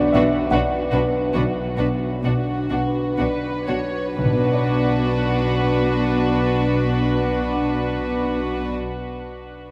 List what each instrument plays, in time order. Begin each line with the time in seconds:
Already playing: grand piano B1 B3 D4 D5, harp B2 F#3 B3 D4 B4
0.01 harp F#4
0.13 double bass section B1, cello section B2, viola section D4, violin section F#4 B4, grand piano B4 E5
0.26 harp B4
0.51 double bass section B1, cello section B2, viola section D4, violin section F#4 B4, harp F#4, grand piano D5 F#5
0.78 harp D4
0.91 double bass section B1, cello section B2, viola section D4, violin section F#4 B4, grand piano B4
1.07 harp B3
1.33 double bass section B1, grand piano B1 B4, cello section B2, harp B2, viola section D4, violin section F#4 B4
1.64 harp F#3
1.77 double bass section B1, cello section B2, grand piano B3, viola section D4, violin section F#4 B4
1.95 harp B3
2.24 double bass section B1, cello section B2, harp D4, grand piano D4, viola section D4, violin section F#4
2.55 harp F#4
2.70 double bass section B1, cello section B2, viola section D4, violin section F#4, grand piano B4
2.87 harp B4
3.18 double bass section B1, cello section B2, viola section D4, violin section F#4 B4, harp F#4, grand piano D5
3.52 harp D4
3.67 double bass section B1, cello section B2, viola section D4, violin section F#4 C#5, grand piano B4
3.84 harp B3
4.16 double bass section B1, grand piano B1 B4, harp B2, cello section B2, viola section D4, violin section F#4 B4
4.24 grand piano B2, harp B3
4.31 grand piano B3, harp D4
4.38 grand piano D4, harp F#4
4.45 grand piano F#4, harp D5
4.54 grand piano D5